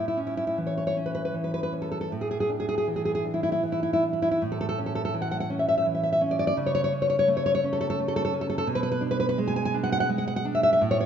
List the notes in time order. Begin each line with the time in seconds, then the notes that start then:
Already playing: A2
0.08 E4
0.17 C#4
0.27 E4
0.37 E4
0.47 E4
0.58 E3
0.67 C#5
0.77 C#5
0.87 C#5
0.97 C#4
1.06 B4
1.15 B4
1.25 B4
1.34 E3
1.44 B4
1.54 B4
1.63 B4
1.73 C#4
1.82 A4
1.92 A4
2.01 A4
2.12 A2
2.21 G#4
2.31 G#4
2.40 G#4
2.50 D4
2.60 G#4
2.69 G#4
2.78 G#4
2.88 E3
2.96 G#4
3.05 G#4
3.15 G#4
3.25 D4
3.34 E4
3.43 E4
3.52 E4
3.63 E3
3.72 E4
3.83 E4
3.93 E4
4.03 D4
4.13 E4
4.22 E4
4.31 E4
4.42 A2
4.52 A4
4.61 A4
4.69 A4
4.78 C#4
4.86 A4
4.95 A4
5.05 A4
5.14 E3
5.22 F#5
5.31 F#5
5.40 F#5
5.50 C#4
5.59 E5
5.69 E5
5.78 E5
5.86 E3
5.95 E5
6.03 E5
6.12 E5
6.21 C#4
6.31 D5
6.39 D5
6.47 D5
6.57 C#3
6.66 C#5
6.75 C#5
6.84 C#5
6.93 C#4
7.02 C#5
7.10 C#5
7.19 C#5
7.28 A3
7.37 C#5
7.46 C#5
7.55 C#5
7.64 C#4
7.73 A4
7.81 A4
7.90 A4
8.00 A3
8.08 A4
8.16 A4
8.25 A4
8.33 C#4
8.41 A4
8.50 A4
8.58 A4
8.67 B2
8.75 B4
8.83 B4
8.92 B4
9.01 D4
9.11 B4
9.20 B4
9.29 B4
9.38 G#3
9.48 G#5
9.56 G#5
9.65 G#5
9.74 D4
9.84 F#5
9.92 F#5
10.00 F#5
10.09 G#3
10.18 F#5
10.28 F#5
10.36 F#5
10.45 D4
10.55 E5
10.63 E5
10.73 E5
10.81 A2
10.91 C#5
11.01 C#5